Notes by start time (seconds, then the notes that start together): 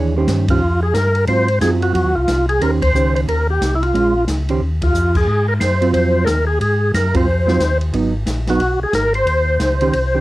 Already playing: D#2 E3 D4 G#4 C#5
0.16 D#3 C#4 G4 C5
0.27 G2, kick, snare, hi-hat pedal, ride
0.48 D#3 C#4 F4 G4 C5, kick, ride
0.61 F2
0.83 G#4
0.94 G2 A#4, kick, snare, hi-hat pedal, ride
1.15 ride
1.27 G#2 F#3 C4 F4 C5, kick, ride
1.48 ride
1.61 F#2 F#3 C4 F4 G#4, kick, snare, hi-hat pedal, ride
1.82 F#4, ride
1.94 F2 F#4, kick, ride
2.05 D#2
2.15 C2 F4
2.28 C2, kick, snare, hi-hat pedal, ride
2.49 G#4, ride
2.61 D#2 D#3 C#4 G4 A#4 C5, kick, ride
2.82 C5, kick, ride
2.94 C#2 D#3 C#4 G4 C5, hi-hat pedal
3.15 C5, ride
3.28 D#2 A#4, kick, ride
3.50 G4
3.61 C2, kick, snare, hi-hat pedal, ride
3.75 E4
3.83 F4, ride
3.94 A#1 G#3 C#4 F4, kick, ride
4.27 C#2, kick, snare, hi-hat pedal, ride
4.49 D#3 C#4 G4 C5, ride
4.61 D#2
4.82 F4, kick, ride
4.94 F2, hi-hat pedal
5.15 G#4, kick, crash
5.27 G#2, kick
5.48 A#4
5.60 F#2 C5, kick, snare, hi-hat pedal, ride
5.81 F#3 C4 F4, ride
5.93 F2 C5, kick, ride
6.25 D#2 A4 A#4, kick, snare, hi-hat pedal, ride
6.47 G#4
6.60 G#2 G#4, kick, ride
6.94 F#2 A#4, kick, snare, hi-hat pedal, ride
7.14 F#3 C4 F4 C5, kick, ride
7.26 F2
7.47 F#3 C4 F4, snare
7.60 D#2, kick, snare, hi-hat pedal, ride
7.81 ride
7.93 G#1 F#3 B3 D#4, kick, ride
8.26 A#1, kick, snare, hi-hat pedal, ride
8.47 F#3 B3 D#4 F#4, snare, ride
8.59 B1, kick, ride
8.79 B1 G#4
8.93 G#1 A#4, kick, snare, hi-hat pedal, ride
9.14 C5, ride
9.26 D#2, kick, ride
9.60 C#2, kick, snare, hi-hat pedal, ride
9.81 D#3 C#4 G4 C5, ride
9.93 C2, kick, ride
10.14 D#3 C#4 G4 C5